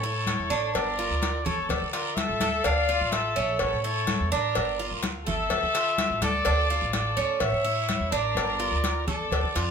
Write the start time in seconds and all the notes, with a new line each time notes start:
Already playing: A2 A4 C#5
0.03 E4, high conga
0.27 cowbell, high conga, short guiro
0.40 E2
0.50 A1 D4, high conga, short guiro
0.74 G1 A#4 D5, cowbell, high conga, long guiro
0.99 F4, high conga
1.10 D2
1.22 cowbell, high conga, short guiro
1.45 G1 A4 C#5, high conga, low conga, short guiro
1.69 D2 A4 D5, cowbell, high conga, low conga, long guiro
1.82 D3
1.93 F4 A#4 D5, cowbell, high conga
2.15 A4 E5, cowbell, high conga, short guiro
2.29 A1
2.40 D2 A4, cowbell, high conga, short guiro
2.64 D2 D4 D5 F5, cowbell, high conga, long guiro
2.89 F4, high conga
3.01 A1
3.11 A4 E5, cowbell, high conga, short guiro
3.36 A#1 C#4, high conga, short guiro
3.59 A1 A4 C#5, cowbell, high conga, long guiro
3.73 A2
3.83 E4 A4 C#5, high conga
4.07 cowbell, high conga, short guiro
4.20 E2
4.31 A1 D4 A#4 D5, high conga, short guiro
4.55 G1, cowbell, high conga, long guiro
4.79 F4, high conga
4.91 D2
5.03 cowbell, high conga, short guiro
5.26 G1 A4 E5, high conga, low conga, short guiro
5.50 D2, cowbell, high conga, long guiro
5.63 D3
5.75 F4, cowbell, high conga
5.98 cowbell, high conga, short guiro
6.10 A1
6.21 D2 A4 D5, cowbell, high conga, short guiro
6.45 D2 D4, cowbell, high conga, long guiro
6.70 F4, high conga
6.82 A1
6.93 A4 D5, cowbell, high conga, short guiro
7.17 D2 C#4, high conga, short guiro
7.40 A1 C#5 E5, cowbell, high conga, long guiro
7.53 A2
7.65 E4, high conga
7.89 cowbell, high conga, short guiro
8.00 E2
8.12 A1 D4 A#4 D5, short guiro
8.35 G1, cowbell, high conga, long guiro
8.60 F4, high conga
8.72 D2
8.84 cowbell, high conga, short guiro
9.07 G1 A4 D5, high conga, low conga, short guiro
9.31 D2, cowbell, high conga, low conga, long guiro
9.43 D3
9.55 F2 F4, cowbell, high conga